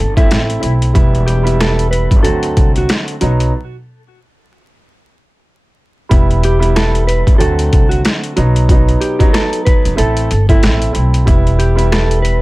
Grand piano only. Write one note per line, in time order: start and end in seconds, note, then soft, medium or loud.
0.16 0.59 A3 medium
0.16 0.59 C4 medium
0.16 0.60 E4 loud
0.60 0.91 A3 medium
0.60 0.92 C4 medium
0.60 0.92 E4 medium
0.93 1.41 G3 medium
0.93 1.41 B3 medium
0.93 1.41 E4 loud
1.43 2.23 G3 loud
1.43 2.23 B3 medium
1.43 2.23 E4 loud
2.23 3.14 D3 medium
2.23 3.14 F#3 medium
2.23 3.14 A3 medium
2.23 3.14 C4 medium
2.23 3.14 F#4 loud
3.21 3.51 F#3 loud
3.21 3.51 B3 medium
3.21 3.51 D#4 medium
6.09 6.57 G3 medium
6.09 6.57 B3 medium
6.09 6.57 E4 loud
6.59 7.39 G3 loud
6.59 7.39 B3 medium
6.59 7.39 E4 loud
7.38 8.29 D3 medium
7.38 8.30 F#3 medium
7.38 8.30 A3 medium
7.38 8.30 C4 medium
7.38 8.30 F#4 loud
8.36 8.67 F#3 loud
8.36 8.67 B3 medium
8.36 8.67 D#4 medium
8.70 9.16 F#3 medium
8.70 9.16 B3 medium
8.70 9.17 D#4 medium
9.19 9.97 F#3 loud
9.19 9.98 B3 medium
9.19 9.98 D#4 loud
9.96 10.27 A3 loud
9.96 10.27 C4 medium
9.96 10.28 E4 loud
10.48 10.90 A3 loud
10.48 10.91 C4 medium
10.48 10.92 E4 loud
10.92 11.24 A3 medium
10.92 11.24 C4 medium
10.92 11.24 E4 medium
11.25 11.73 G3 medium
11.25 11.73 B3 medium
11.25 11.73 E4 loud
11.75 12.42 G3 loud
11.75 12.42 B3 medium
11.75 12.42 E4 loud